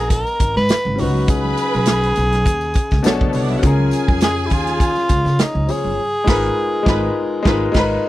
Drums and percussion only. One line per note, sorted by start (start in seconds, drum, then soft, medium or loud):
0.10 kick medium
0.10 closed hi-hat loud
0.10 tambourine soft
0.10 muted conga soft
0.27 tambourine soft
0.27 muted conga soft
0.40 kick medium
0.40 closed hi-hat medium
0.40 tambourine medium
0.57 snare soft
0.69 snare loud
0.69 closed hi-hat medium
0.69 tambourine medium
0.69 muted conga soft
0.85 high conga medium
0.85 low conga medium
0.98 open hi-hat medium
0.98 tambourine soft
0.98 low conga medium
1.14 high conga medium
1.28 kick loud
1.28 closed hi-hat medium
1.28 tambourine soft
1.28 low conga medium
1.44 high conga medium
1.57 closed hi-hat medium
1.57 tambourine medium
1.74 tambourine soft
1.74 high conga medium
1.86 snare loud
1.86 closed hi-hat medium
1.86 tambourine medium
1.86 muted conga soft
2.03 closed hi-hat soft
2.03 muted conga soft
2.16 closed hi-hat medium
2.16 tambourine soft
2.32 snare soft
2.32 closed hi-hat medium
2.45 kick medium
2.45 closed hi-hat medium
2.45 tambourine medium
2.45 muted conga soft
2.61 tambourine soft
2.74 kick medium
2.74 closed hi-hat medium
2.74 tambourine medium
2.91 kick medium
2.91 snare soft
2.91 tambourine soft
3.04 snare loud
3.04 closed hi-hat medium
3.04 tambourine medium
3.04 muted conga soft
3.21 kick loud
3.21 muted conga soft
3.21 high conga medium
3.21 low conga medium
3.33 open hi-hat medium
3.33 tambourine soft
3.33 low conga medium
3.50 high conga medium
3.63 kick loud
3.63 closed hi-hat medium
3.63 tambourine medium
3.63 muted conga soft
3.63 low conga medium
3.79 muted conga soft
3.79 high conga medium
3.91 closed hi-hat medium
3.91 tambourine medium
4.08 kick loud
4.08 tambourine soft
4.08 high conga medium
4.21 snare loud
4.21 closed hi-hat medium
4.21 tambourine medium
4.38 muted conga soft
4.50 kick medium
4.50 closed hi-hat medium
4.50 tambourine soft
4.67 snare soft
4.67 closed hi-hat soft
4.80 kick loud
4.80 closed hi-hat medium
4.80 tambourine medium
4.80 muted conga soft
4.96 tambourine soft
4.96 muted conga soft
5.09 kick medium
5.09 closed hi-hat medium
5.09 tambourine medium
5.26 snare soft
5.26 tambourine soft
5.39 snare loud
5.39 closed hi-hat medium
5.39 tambourine medium
5.39 muted conga soft
5.55 muted conga soft
5.55 high conga medium
5.55 low conga medium
5.69 open hi-hat medium
5.69 tambourine medium
5.69 low conga medium
5.85 high conga medium
6.28 kick loud
6.28 snare loud
6.28 crash loud
6.86 kick loud
6.86 snare loud
7.45 kick loud
7.45 snare loud
7.74 kick loud
7.74 snare loud
7.74 crash medium